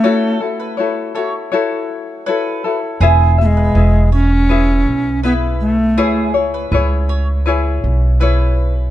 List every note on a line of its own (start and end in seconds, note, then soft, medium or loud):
0.00 0.37 A3 medium
0.00 0.41 F#4 medium
0.00 0.39 A4 medium
0.00 0.41 C#5 medium
0.05 0.41 E4 medium
0.05 0.39 A4 medium
0.40 0.78 E4 soft
0.40 0.77 F#4 soft
0.40 0.78 A4 medium
0.60 0.95 B4 medium
0.77 1.15 E4 medium
0.77 1.15 F#4 medium
0.77 1.13 A4 medium
0.77 1.15 C#5 medium
1.15 1.52 E4 soft
1.15 1.51 F#4 soft
1.15 1.52 A4 soft
1.15 1.33 C#5 medium
1.52 2.28 E4 medium
1.52 2.26 F#4 medium
1.52 2.27 A4 medium
1.52 2.25 C#5 medium
2.26 2.64 E4 medium
2.26 2.64 F#4 medium
2.26 2.63 A4 medium
2.26 2.79 B4 medium
2.26 2.64 C#5 medium
2.64 3.01 E4 soft
2.64 3.02 F#4 soft
2.64 3.01 A4 soft
3.00 3.71 E1 loud
3.00 3.38 E4 medium
3.00 3.36 G#4 medium
3.00 3.38 G#4 medium
3.00 3.38 B4 medium
3.00 3.37 E5 medium
3.38 3.47 A3 medium
3.38 3.75 E4 soft
3.38 3.76 G#4 soft
3.38 3.75 E5 soft
3.46 4.10 G#3 medium
3.57 3.92 B4 medium
3.75 4.82 E1 medium
3.75 4.49 E4 medium
3.75 4.50 G#4 medium
3.75 4.49 B4 soft
3.75 4.51 E5 medium
4.12 5.20 C#4 loud
4.12 4.30 C#5 medium
4.49 5.24 E4 medium
4.49 5.25 G#4 medium
4.49 5.23 B4 medium
4.49 5.26 E5 medium
4.86 5.98 B1 medium
5.23 5.33 B3 medium
5.23 5.98 E4 medium
5.23 5.97 G#4 medium
5.23 5.76 B4 medium
5.23 5.97 B4 medium
5.23 5.98 E5 medium
5.61 6.31 A3 medium
5.97 6.68 C#2 medium
5.97 6.35 E4 medium
5.97 6.33 G#4 medium
5.97 6.35 G#4 medium
5.97 6.35 B4 medium
5.97 6.33 C#5 medium
6.34 6.71 E4 soft
6.34 6.73 G#4 soft
6.34 6.72 C#5 medium
6.54 6.89 B4 medium
6.72 7.79 C#2 medium
6.72 7.46 E4 medium
6.72 7.47 G#4 medium
6.72 7.45 B4 medium
6.72 7.47 C#5 medium
7.09 7.27 C#5 medium
7.46 8.20 E4 medium
7.46 8.22 G#4 medium
7.46 8.20 B4 medium
7.46 8.22 C#5 medium
7.84 8.91 B1 medium
8.20 8.91 E4 medium
8.20 8.91 G#4 medium
8.20 8.91 B4 medium
8.20 8.73 B4 medium
8.20 8.91 C#5 medium